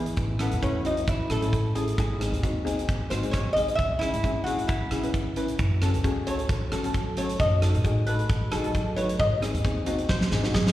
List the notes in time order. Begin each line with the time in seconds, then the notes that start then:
Already playing: E3 B3 E4 G#4
0.06 closed hi-hat
0.17 A1, kick, closed hi-hat
0.39 B3 C#4 E4 A4, cross-stick, closed hi-hat
0.52 E2, closed hi-hat
0.62 C#4 E4 B4, kick, closed hi-hat
0.85 C#4 D#4 E4 F#4, closed hi-hat
0.97 closed hi-hat
1.07 E4, kick, closed hi-hat
1.30 A2 C#4 E4 A4, cross-stick, closed hi-hat
1.42 C#4 E4 A4, closed hi-hat
1.53 kick, closed hi-hat
1.75 C#4 E4 G#4 A4, closed hi-hat
1.88 closed hi-hat
1.98 G#1 G#4, kick, closed hi-hat
2.20 C4 D#4 G#4, cross-stick, closed hi-hat
2.32 D#2, closed hi-hat
2.42 C4 D#4 F#4, kick, closed hi-hat
2.65 C4 D#4 G#4, closed hi-hat
2.79 closed hi-hat
2.89 kick, closed hi-hat
3.10 G#2 C4 D#4 F#4 C5, cross-stick, closed hi-hat
3.23 C4 D#4 G#4, closed hi-hat
3.31 G#1 C#5, kick, cross-stick, closed hi-hat
3.53 C2 C4 D#4 G#4 D#5, closed hi-hat
3.68 closed hi-hat
3.75 C#2 E5, kick, closed hi-hat
3.99 C#4 E4 G#4, cross-stick, closed hi-hat
4.14 G#1, closed hi-hat
4.24 C#4 E4 G#4, kick, closed hi-hat
4.44 C#4 E4 F#4 G#4, closed hi-hat
4.59 closed hi-hat
4.67 E4, kick, closed hi-hat
4.91 C#3 C#4 E4 G#4, cross-stick, closed hi-hat
5.03 C#4 E4 B4, closed hi-hat
5.14 kick, closed hi-hat
5.36 C#4 E4 B4, closed hi-hat
5.48 closed hi-hat
5.59 F#2, kick, closed hi-hat
5.82 C#4 F#4 A4, cross-stick, closed hi-hat
5.94 C#2, closed hi-hat
6.04 C#4 F#4 G#4, kick, closed hi-hat
6.27 C#4 F#4 A4 C#5, closed hi-hat
6.39 closed hi-hat
6.49 kick, closed hi-hat
6.72 F#3 C#4 F#4 A4, cross-stick, closed hi-hat
6.84 C#4 F#4 A4, closed hi-hat
6.94 kick, closed hi-hat
7.17 C#4 F#4 A4 C#5, closed hi-hat
7.29 closed hi-hat
7.40 F#2 D#5, kick, closed hi-hat
7.62 D#4 F#4 A4, cross-stick, closed hi-hat
7.75 A2, closed hi-hat
7.84 D#4 F#4 G#4, kick, closed hi-hat
8.07 D#4 F#4 A4 B4, closed hi-hat
8.19 closed hi-hat
8.29 kick, closed hi-hat
8.51 F#3 D#4 F#4 G#4 A4, cross-stick, closed hi-hat
8.64 D#4 F#4 A4, closed hi-hat
8.75 kick, closed hi-hat
8.96 D#4 F#4 B4 C#5, closed hi-hat
9.09 closed hi-hat
9.19 G#2 D#5, kick, closed hi-hat
9.42 C4 D#4 G#4, cross-stick, closed hi-hat
9.54 D#2, closed hi-hat
9.64 C4 D#4 G#4, kick, closed hi-hat
9.86 C4 D#4 F#4, closed hi-hat
9.99 closed hi-hat
10.09 C5, kick, snare
10.21 snare
10.31 G#2 C4 D#4 G#4, snare
10.44 C4 D#4 F#4, snare
10.54 G#1 G#4, kick, snare
10.67 snare